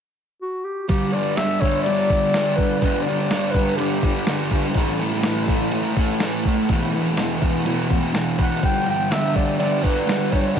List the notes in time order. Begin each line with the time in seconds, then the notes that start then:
0.41 F#4
0.64 G4
0.89 G2 D3 G3 G4, kick, open hi-hat
1.13 D3 G3 D5
1.37 G2 D3 G3 E5, snare, open hi-hat
1.60 D3 G3 C#5, kick
1.82 G2 D5, open hi-hat
1.87 D3 G3
2.10 D3 G3, kick
2.34 G2 D3 G3, snare, open hi-hat
2.56 G3 B4, kick
2.60 D3
2.80 G2 D3 G3 B4, kick, open hi-hat
3.03 D5
3.07 D3 G3
3.31 G2 D3 G3, snare, open hi-hat
3.51 B4, kick
3.56 D3 G3
3.76 G2 D3 G4, open hi-hat
3.81 G3
4.03 D3 G3, kick
4.27 G2 D3 G3, snare, open hi-hat
4.51 D3 G3, kick
4.74 A2 E3 A3, kick, open hi-hat
5.00 E3 A3
5.23 A2 E3 A3, snare, open hi-hat
5.48 E3 A3, kick
5.72 A2 E3 A3, open hi-hat
5.97 E3 A3, kick
6.20 A2 E3 A3, snare, open hi-hat
6.45 E3 A3, kick
6.69 E2 B2 E3, kick, open hi-hat
6.93 B2 E3
7.17 E2 B2 E3, snare, open hi-hat
7.41 B2 E3, kick
7.64 E2 B2 E3, open hi-hat
7.89 B2 E3, kick
8.13 E2 B2 E3, snare, open hi-hat
8.38 B2 E3, kick
8.42 F#5
8.61 G2 D3 G3 G5, kick, open hi-hat
8.86 D3 G3
8.90 G5
9.10 G2 D3 G3 E5, snare, open hi-hat
9.34 D3 G3 D5, kick
9.58 G2 D3 G3 D5, open hi-hat
9.82 D3 G3 B4, kick
10.06 G2 D3 G3, snare, open hi-hat
10.31 D3 G3 C#5, kick
10.54 G2 D3 D5